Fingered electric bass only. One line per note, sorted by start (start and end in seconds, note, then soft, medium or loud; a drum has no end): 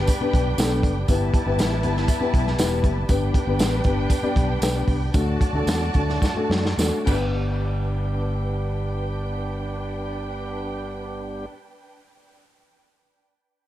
0.21 muted fingered electric bass stroke soft
0.33 0.54 B1 medium
0.58 0.85 B1 loud
0.83 1.04 F#1 medium
1.09 1.29 G1 loud
1.46 1.56 G1 medium
1.58 1.85 A1 medium
1.84 2.04 G1 medium
2.21 muted fingered electric bass stroke medium
2.34 2.54 B1 medium
2.59 2.84 E1 medium
2.84 3.04 F#1 loud
3.09 3.29 G1 loud
3.47 3.57 G1 loud
3.59 3.80 A1 loud
3.85 4.06 G1 medium
4.23 muted fingered electric bass stroke soft
4.36 4.57 B1 medium
4.62 4.83 B1 medium
4.87 5.09 C2 medium
5.14 5.36 D2 loud
5.53 5.64 D2 medium
5.67 5.89 E2 loud
5.95 6.17 D2 medium
6.35 muted fingered electric bass stroke soft
6.50 6.73 F#2 medium
6.78 6.89 E2 medium
7.07 11.45 G1 medium